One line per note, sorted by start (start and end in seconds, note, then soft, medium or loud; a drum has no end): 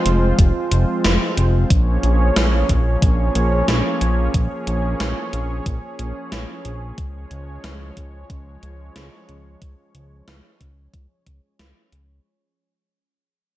0.00 1.66 F3 medium
0.00 1.66 G#3 medium
0.00 1.66 C4 medium
0.00 1.68 F4 medium
0.00 1.66 C5 medium
0.06 0.33 F1 medium
0.06 closed hi-hat medium
0.39 0.52 F1 loud
0.39 kick loud
0.39 closed hi-hat medium
0.72 0.85 F1 medium
0.72 closed hi-hat medium
1.04 1.18 F1 medium
1.04 snare loud
1.04 closed hi-hat medium
1.37 1.65 F1 medium
1.37 closed hi-hat medium
1.70 1.98 A#1 loud
1.70 6.94 F3 medium
1.70 6.94 A#3 medium
1.70 12.21 C#4 medium
1.70 12.21 G#4 medium
1.70 6.94 C#5 medium
1.70 kick loud
1.70 closed hi-hat medium
2.03 2.31 A#1 medium
2.03 closed hi-hat medium
2.36 2.64 A#1 medium
2.36 snare loud
2.36 closed hi-hat medium
2.69 2.97 A#1 medium
2.69 kick medium
2.69 closed hi-hat medium
3.02 3.30 A#1 loud
3.02 kick loud
3.02 closed hi-hat medium
3.35 3.63 A#1 loud
3.35 closed hi-hat medium
3.68 3.82 A#1 loud
3.68 snare loud
3.68 closed hi-hat medium
4.01 4.29 A#1 medium
4.01 closed hi-hat medium
4.34 4.48 A#1 loud
4.34 kick loud
4.34 closed hi-hat medium
4.67 4.95 A#1 loud
4.67 closed hi-hat medium
5.00 5.14 A#1 medium
5.00 snare loud
5.00 closed hi-hat medium
5.33 5.61 A#1 medium
5.33 closed hi-hat medium
5.66 5.80 A#1 loud
5.66 kick loud
5.66 closed hi-hat medium
5.99 6.13 A#1 medium
5.99 closed hi-hat medium
6.32 6.46 A#1 medium
6.32 snare loud
6.32 closed hi-hat medium
6.65 6.93 A#1 medium
6.65 closed hi-hat medium
6.98 7.26 C#2 medium
6.98 12.21 F3 medium
6.98 12.21 G#3 medium
6.98 12.21 C#5 medium
6.98 kick loud
6.98 closed hi-hat medium
7.31 7.58 C#2 medium
7.31 closed hi-hat medium
7.64 7.91 C#2 medium
7.64 snare loud
7.64 closed hi-hat medium
7.97 8.24 C#2 medium
7.97 kick medium
7.97 closed hi-hat medium
8.30 8.57 C#2 medium
8.30 kick loud
8.30 closed hi-hat medium
8.63 8.90 C#2 medium
8.63 closed hi-hat medium
8.96 9.10 C#2 loud
8.96 snare loud
8.96 closed hi-hat medium
9.29 9.56 C#2 medium
9.29 closed hi-hat medium
9.62 9.75 C#2 loud
9.62 kick loud
9.62 closed hi-hat medium
9.95 10.22 C#2 medium
9.95 closed hi-hat medium
10.28 10.41 C#2 medium
10.28 snare loud
10.28 closed hi-hat medium
10.61 10.88 C#2 medium
10.61 kick medium
10.61 closed hi-hat medium
10.94 11.07 C#2 loud
10.94 kick loud
10.94 closed hi-hat medium
11.27 11.40 C#2 medium
11.27 kick medium
11.27 closed hi-hat medium
11.59 11.73 C#2 medium
11.59 snare loud
11.59 closed hi-hat medium
11.92 12.20 C#2 medium
11.92 closed hi-hat medium